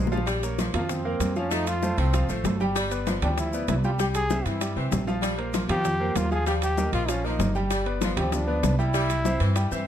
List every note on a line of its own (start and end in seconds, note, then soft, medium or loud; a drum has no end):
0.00 0.68 A#1 loud
0.07 low bongo medium
0.12 0.25 F3 medium
0.12 0.25 F4 medium
0.12 0.25 F5 medium
0.12 high conga medium
0.12 low timbale medium
0.12 maracas soft
0.17 low bongo medium
0.27 0.43 G3 medium
0.27 high bongo medium
0.27 high conga soft
0.27 high timbale medium
0.27 maracas medium
0.43 0.69 A#3 medium
0.43 0.69 A#4 medium
0.43 0.69 C#5 medium
0.43 high conga soft
0.43 high timbale medium
0.43 maracas medium
0.59 1.16 F3 medium
0.59 high bongo medium
0.59 high conga medium
0.59 high timbale medium
0.59 low timbale medium
0.59 maracas medium
0.74 1.17 F2 medium
0.74 0.99 F3 medium
0.74 0.81 A#3 medium
0.74 1.00 F4 medium
0.74 1.00 F5 medium
0.74 high conga soft
0.74 low conga medium
0.74 high timbale loud
0.74 maracas soft
0.89 1.38 C4 medium
0.89 high bongo medium
0.89 high conga soft
0.89 low conga medium
0.89 high timbale medium
0.89 maracas medium
1.05 1.30 A#3 medium
1.05 1.31 A#4 medium
1.05 1.31 F5 medium
1.05 high conga soft
1.20 1.92 F2 medium
1.20 high bongo medium
1.20 low bongo medium
1.20 high conga medium
1.20 high timbale medium
1.20 low timbale medium
1.20 maracas medium
1.36 1.49 F3 medium
1.36 1.54 C#4 medium
1.36 1.49 F4 medium
1.36 1.49 F5 medium
1.36 high conga soft
1.36 maracas soft
1.51 1.77 F3 medium
1.51 1.76 A3 medium
1.51 1.69 D#4 loud
1.51 1.77 F4 medium
1.51 1.77 F5 medium
1.51 high bongo medium
1.51 high conga soft
1.51 high timbale medium
1.51 maracas medium
1.67 2.00 F4 loud
1.67 high bongo soft
1.67 high conga soft
1.67 high timbale medium
1.67 maracas medium
1.82 2.08 A3 medium
1.82 2.08 A4 medium
1.82 2.08 C5 medium
1.82 high bongo medium
1.82 high conga medium
1.82 low timbale medium
1.82 maracas medium
1.98 2.27 C2 loud
1.98 2.14 F3 medium
1.98 2.29 C4 medium
1.98 high timbale medium
1.98 maracas soft
2.14 2.26 F3 medium
2.14 2.27 F4 medium
2.14 2.27 F5 medium
2.14 high bongo medium
2.14 high conga soft
2.14 high timbale medium
2.14 maracas medium
2.29 2.43 A1 medium
2.29 2.53 F3 medium
2.29 2.55 A3 medium
2.29 2.55 A4 medium
2.29 2.55 C5 medium
2.29 high bongo soft
2.29 high conga soft
2.29 maracas medium
2.44 3.16 G1 loud
2.44 high bongo medium
2.44 low bongo medium
2.44 high conga medium
2.44 high timbale medium
2.44 low timbale medium
2.44 maracas medium
2.60 2.86 G3 medium
2.60 2.86 G4 loud
2.60 2.86 G5 loud
2.60 high bongo soft
2.60 high conga medium
2.60 maracas soft
2.76 2.92 G3 loud
2.76 high bongo medium
2.76 high conga soft
2.76 high timbale medium
2.76 maracas medium
2.91 3.16 B3 medium
2.91 3.17 B4 medium
2.91 3.17 D5 medium
2.91 high conga soft
2.91 high timbale medium
2.91 maracas medium
3.07 3.64 F3 medium
3.07 high bongo medium
3.07 high conga loud
3.07 high timbale medium
3.07 low timbale medium
3.07 maracas medium
3.22 3.65 D2 medium
3.22 3.47 G3 medium
3.22 3.29 D4 medium
3.22 3.48 G4 medium
3.22 3.48 G5 medium
3.22 high conga soft
3.22 low conga medium
3.22 high timbale loud
3.22 maracas soft
3.38 3.67 E4 medium
3.38 high bongo medium
3.38 high conga soft
3.38 high timbale medium
3.38 maracas medium
3.53 3.79 B3 medium
3.53 3.79 B4 medium
3.53 3.79 D5 medium
3.53 high conga soft
3.53 maracas medium
3.68 4.40 C2 loud
3.68 3.76 E4 medium
3.68 high bongo medium
3.68 low bongo medium
3.68 high conga medium
3.68 high timbale loud
3.68 low timbale medium
3.68 maracas medium
3.84 3.97 G3 medium
3.84 3.91 F4 medium
3.84 3.97 G4 medium
3.84 3.97 G5 medium
3.84 high conga soft
3.84 maracas soft
3.99 4.24 G3 medium
3.99 4.25 G3 medium
3.99 4.25 G4 medium
3.99 4.07 G4 loud
3.99 4.25 G5 medium
3.99 high bongo medium
3.99 high conga soft
3.99 high timbale medium
3.99 maracas medium
4.15 4.48 G#4 loud
4.15 high bongo soft
4.15 high conga soft
4.15 high timbale medium
4.15 maracas medium
4.30 4.56 C4 medium
4.30 4.56 C5 medium
4.30 4.56 E5 medium
4.30 high bongo medium
4.30 high conga loud
4.30 low timbale medium
4.30 maracas medium
4.45 4.74 G2 medium
4.45 4.62 E3 medium
4.45 4.77 E4 medium
4.45 high timbale medium
4.45 maracas soft
4.61 4.74 G3 medium
4.61 4.74 G4 medium
4.61 4.74 G5 medium
4.61 high bongo medium
4.61 high conga soft
4.61 high timbale medium
4.61 maracas medium
4.76 4.91 C2 medium
4.76 5.01 E3 medium
4.76 5.02 C4 medium
4.76 5.02 C5 medium
4.76 5.02 E5 medium
4.76 high bongo soft
4.76 high conga soft
4.92 5.64 A#1 loud
4.92 high bongo medium
4.92 low bongo medium
4.92 high conga medium
4.92 high timbale medium
4.92 low timbale medium
4.92 maracas medium
5.07 5.33 F3 medium
5.07 5.33 F4 medium
5.07 5.33 F5 medium
5.07 high bongo soft
5.07 high conga medium
5.07 maracas soft
5.22 5.39 G3 medium
5.22 high bongo medium
5.22 high conga soft
5.22 high timbale medium
5.22 maracas medium
5.38 5.64 A#3 medium
5.38 5.64 A#4 medium
5.38 5.64 C5 medium
5.38 high conga soft
5.38 high timbale medium
5.53 6.11 F3 medium
5.53 high bongo medium
5.53 high conga medium
5.53 high timbale medium
5.53 low timbale medium
5.53 maracas medium
5.69 6.12 F2 loud
5.69 5.95 F3 medium
5.69 5.95 F4 medium
5.69 6.18 G4 loud
5.69 5.95 F5 medium
5.69 high conga soft
5.69 low conga medium
5.69 high timbale loud
5.69 maracas soft
5.85 high bongo medium
5.85 high conga soft
5.85 low conga medium
5.85 high timbale medium
5.85 maracas medium
6.00 6.26 A#3 medium
6.00 6.26 A#4 medium
6.00 6.26 C5 medium
6.00 high conga soft
6.15 6.87 D#2 medium
6.15 6.31 F4 loud
6.15 high bongo medium
6.15 low bongo medium
6.15 high conga medium
6.15 high timbale loud
6.15 low timbale medium
6.15 maracas medium
6.31 6.44 F3 medium
6.31 6.44 F4 medium
6.31 6.46 G#4 loud
6.31 6.44 F5 medium
6.31 high conga soft
6.31 maracas soft
6.46 6.72 F3 medium
6.46 6.71 G3 medium
6.46 6.72 F4 medium
6.46 6.54 G4 loud
6.46 6.72 F5 medium
6.46 high bongo medium
6.46 high conga soft
6.46 high timbale medium
6.46 maracas medium
6.62 6.92 G4 loud
6.62 high bongo soft
6.62 high conga soft
6.62 high timbale medium
6.62 maracas medium
6.77 7.03 A#3 medium
6.77 7.03 A#4 medium
6.77 7.03 D#5 medium
6.77 high bongo medium
6.77 high conga loud
6.77 low timbale medium
6.77 maracas medium
6.93 7.36 A#1 loud
6.93 7.10 F3 medium
6.93 7.11 F4 loud
6.93 high timbale medium
6.93 maracas soft
7.08 7.21 F3 medium
7.08 7.27 C#4 medium
7.08 7.21 F4 medium
7.08 7.22 F5 medium
7.08 high bongo medium
7.08 high conga soft
7.08 high timbale loud
7.08 maracas medium
7.24 7.49 F3 medium
7.24 7.49 A#3 medium
7.24 7.56 D#4 medium
7.24 7.50 A#4 medium
7.24 7.50 D#5 medium
7.24 high bongo soft
7.24 high conga soft
7.39 8.11 G1 medium
7.39 high bongo medium
7.39 low bongo medium
7.39 high conga medium
7.39 high timbale medium
7.39 low timbale medium
7.39 maracas medium
7.55 7.81 G3 medium
7.55 7.81 G4 medium
7.55 7.81 G5 loud
7.55 high bongo soft
7.55 high conga medium
7.55 maracas soft
7.71 7.87 G3 medium
7.71 high bongo medium
7.71 high conga soft
7.71 high timbale loud
7.71 maracas medium
7.86 8.11 B3 medium
7.86 8.12 B4 medium
7.86 8.12 D5 medium
7.86 high conga soft
7.86 high timbale medium
8.01 8.59 F3 medium
8.01 high bongo medium
8.01 high conga medium
8.01 high timbale medium
8.01 low timbale medium
8.01 maracas medium
8.17 8.60 D2 loud
8.17 8.42 G3 medium
8.17 8.35 C4 medium
8.17 8.42 G4 medium
8.17 8.42 G5 medium
8.17 high conga soft
8.17 low conga medium
8.17 high timbale loud
8.17 maracas soft
8.32 8.79 D4 medium
8.32 high bongo medium
8.32 high conga soft
8.32 low conga medium
8.32 high timbale medium
8.32 maracas medium
8.47 8.73 B3 medium
8.47 8.73 B4 medium
8.47 8.73 D5 medium
8.47 high conga soft
8.63 9.35 C2 loud
8.63 high bongo medium
8.63 low bongo medium
8.63 high conga medium
8.63 high timbale loud
8.63 low timbale medium
8.63 maracas medium
8.79 8.91 G3 medium
8.79 9.83 E4 loud
8.79 8.91 G4 medium
8.79 8.92 G5 medium
8.79 high conga soft
8.79 maracas soft
8.94 9.18 G3 medium
8.94 9.19 G3 medium
8.94 9.20 G4 medium
8.94 9.20 G5 medium
8.94 high bongo medium
8.94 high conga soft
8.94 high timbale medium
8.94 maracas medium
9.10 high bongo soft
9.10 high conga soft
9.10 high timbale medium
9.10 maracas medium
9.25 9.50 C4 medium
9.25 9.51 C5 medium
9.25 9.51 E5 medium
9.25 high bongo medium
9.25 high conga loud
9.25 low timbale medium
9.25 maracas medium
9.40 9.69 G2 loud
9.40 9.57 E3 medium
9.40 high timbale medium
9.40 maracas soft
9.56 9.68 G3 medium
9.56 9.69 G4 medium
9.56 9.69 G5 medium
9.56 high bongo medium
9.56 high conga soft
9.56 high timbale medium
9.56 maracas medium
9.71 9.86 G2 medium
9.71 9.87 E3 medium
9.71 9.87 C4 medium
9.71 9.87 C5 medium
9.71 9.87 E5 medium
9.71 high bongo soft
9.71 high conga soft
9.71 maracas medium